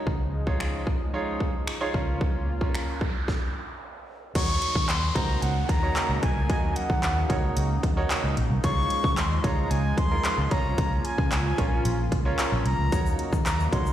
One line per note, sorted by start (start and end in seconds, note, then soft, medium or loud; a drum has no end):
0.00 1.90 C#3 medium
0.00 1.90 D#4 medium
0.07 1.90 C#2 medium
0.07 3.25 F3 medium
0.07 1.92 G#3 medium
0.07 kick loud
0.47 0.83 D#4 medium
0.47 0.83 F4 medium
0.47 0.83 G#4 medium
0.47 0.83 C#5 medium
0.47 kick medium
0.60 finger snap loud
0.87 kick medium
1.14 1.50 D#4 medium
1.14 1.50 F4 medium
1.14 1.50 G#4 medium
1.14 1.50 C#5 medium
1.40 kick medium
1.67 finger snap loud
1.81 1.94 D#4 medium
1.81 1.93 F4 medium
1.81 1.94 G#4 medium
1.81 1.93 C#5 loud
1.94 3.24 C#2 medium
1.94 3.27 C#3 medium
1.94 3.27 A#3 medium
1.94 2.48 C#4 medium
1.94 2.48 F4 medium
1.94 3.27 F4 medium
1.94 2.48 A#4 medium
1.94 2.48 C#5 loud
1.94 kick medium
2.21 kick loud
2.21 noise sweep medium
2.61 2.97 C#4 medium
2.61 2.98 F4 medium
2.61 2.98 A#4 medium
2.61 2.98 C#5 medium
2.61 kick medium
2.75 finger snap loud
3.01 kick medium
3.28 kick loud
3.28 snare medium
4.35 4.56 D#2 loud
4.35 10.47 C#3 medium
4.35 8.60 F#3 medium
4.35 8.60 A#3 medium
4.35 4.79 D#4 medium
4.35 10.47 D#4 medium
4.35 4.79 F#4 medium
4.35 4.79 A#4 medium
4.35 4.79 C#5 medium
4.35 4.90 C#6 loud
4.35 kick loud
4.35 closed hi-hat medium
4.35 crash medium
4.35 downlifter medium
4.62 closed hi-hat medium
4.75 4.86 D#3 loud
4.75 kick medium
4.89 5.09 D#2 medium
4.89 5.17 C6 loud
4.89 clap loud
4.89 closed hi-hat medium
5.15 5.36 C#2 medium
5.15 5.52 D#4 medium
5.15 5.52 F#4 medium
5.15 5.52 A#4 medium
5.15 5.52 C5 medium
5.15 5.44 A#5 loud
5.15 kick medium
5.15 closed hi-hat medium
5.42 5.63 C#2 medium
5.42 5.70 F#5 medium
5.42 closed hi-hat medium
5.69 5.90 D#2 medium
5.69 6.24 A#5 loud
5.69 kick loud
5.69 closed hi-hat medium
5.82 6.19 D#4 medium
5.82 6.19 F#4 medium
5.82 6.19 A#4 medium
5.82 6.19 C#5 medium
5.96 clap loud
5.96 closed hi-hat medium
6.09 6.20 C#2 medium
6.22 6.33 C2 medium
6.22 6.78 G#5 medium
6.22 kick medium
6.22 closed hi-hat medium
6.36 6.50 C#2 medium
6.49 6.70 D#2 loud
6.49 6.93 D#4 medium
6.49 6.93 F#4 medium
6.49 6.93 A#4 medium
6.49 6.93 D#5 medium
6.49 kick loud
6.49 closed hi-hat medium
6.76 7.83 F#5 medium
6.76 closed hi-hat medium
6.90 7.00 D#3 loud
6.90 kick loud
7.03 7.24 D#2 medium
7.03 clap loud
7.03 closed hi-hat medium
7.30 7.50 C#2 medium
7.30 7.66 D#4 medium
7.30 7.66 F#4 medium
7.30 7.66 A#4 medium
7.30 7.67 C#5 medium
7.30 kick loud
7.30 closed hi-hat medium
7.57 7.77 C#2 loud
7.57 closed hi-hat loud
7.83 8.04 D#2 medium
7.83 kick loud
7.83 closed hi-hat medium
7.97 8.33 D#4 medium
7.97 8.33 F#4 medium
7.97 8.33 A#4 medium
7.97 8.34 C#5 loud
8.10 clap loud
8.10 closed hi-hat medium
8.24 8.34 C#2 medium
8.37 8.47 A#1 medium
8.37 closed hi-hat medium
8.50 8.61 C2 medium
8.64 8.84 C#2 loud
8.64 12.88 F3 medium
8.64 10.49 G#3 medium
8.64 9.07 D#4 medium
8.64 9.08 F4 medium
8.64 9.08 G#4 medium
8.64 9.08 C#5 medium
8.64 9.19 C#6 loud
8.64 kick loud
8.64 closed hi-hat medium
8.90 closed hi-hat medium
9.04 9.14 C#3 loud
9.04 kick loud
9.17 9.38 D#2 medium
9.17 9.46 C6 loud
9.17 clap loud
9.17 closed hi-hat medium
9.44 9.65 C#2 loud
9.44 9.80 D#4 medium
9.44 9.81 F4 medium
9.44 9.81 G#4 medium
9.44 9.81 C#5 medium
9.44 9.73 A#5 medium
9.44 kick loud
9.44 closed hi-hat medium
9.71 9.92 C#2 medium
9.71 9.99 G#5 loud
9.71 closed hi-hat loud
9.98 10.18 D#2 medium
9.98 10.53 C6 loud
9.98 kick medium
9.98 closed hi-hat medium
10.11 10.47 D#4 medium
10.11 10.48 F4 medium
10.11 10.48 G#4 medium
10.11 10.48 A#4 medium
10.24 clap loud
10.24 closed hi-hat medium
10.38 10.48 C#2 medium
10.51 10.62 C#2 medium
10.51 13.93 C#3 medium
10.51 13.93 A#3 medium
10.51 11.37 C#4 medium
10.51 11.37 F4 medium
10.51 12.90 F4 medium
10.51 11.37 A#4 medium
10.51 11.37 C#5 medium
10.51 11.06 A#5 loud
10.51 kick medium
10.51 closed hi-hat medium
10.65 10.75 C2 medium
10.78 10.99 C#2 loud
10.78 kick loud
10.78 closed hi-hat medium
11.05 12.12 G#5 medium
11.05 closed hi-hat medium
11.18 11.29 C#3 loud
11.18 kick loud
11.32 11.52 C#2 medium
11.32 clap loud
11.32 closed hi-hat medium
11.58 11.79 A#1 medium
11.58 11.95 C#4 medium
11.58 11.95 F4 medium
11.58 11.95 A#4 medium
11.58 11.95 C#5 medium
11.58 kick medium
11.58 closed hi-hat medium
11.85 12.06 A#1 loud
11.85 closed hi-hat loud
12.12 12.33 C#2 medium
12.12 kick medium
12.12 closed hi-hat medium
12.25 12.62 C#4 medium
12.25 12.62 F4 medium
12.25 12.62 A#4 medium
12.25 12.62 C#5 loud
12.39 clap loud
12.39 closed hi-hat loud
12.52 12.63 A#1 medium
12.66 12.76 C2 medium
12.66 13.15 A#5 loud
12.66 closed hi-hat medium
12.79 12.89 C#2 medium
12.92 13.13 D#2 loud
12.92 13.93 F#3 medium
12.92 13.36 D#4 medium
12.92 13.93 D#4 medium
12.92 13.36 F#4 medium
12.92 13.36 A#4 medium
12.92 13.36 C#5 medium
12.92 kick loud
12.92 closed hi-hat medium
12.92 shaker medium
13.06 shaker soft
13.19 closed hi-hat medium
13.33 13.43 D#3 medium
13.33 kick loud
13.33 shaker medium
13.46 13.67 D#2 medium
13.46 13.71 A#5 medium
13.46 clap loud
13.46 closed hi-hat medium
13.46 shaker medium
13.60 shaker soft
13.73 13.93 C#2 medium
13.73 13.93 D#4 medium
13.73 13.93 F#4 medium
13.73 13.93 A#4 medium
13.73 13.93 C#5 medium
13.73 13.93 C6 medium
13.73 kick loud
13.73 closed hi-hat medium
13.86 shaker soft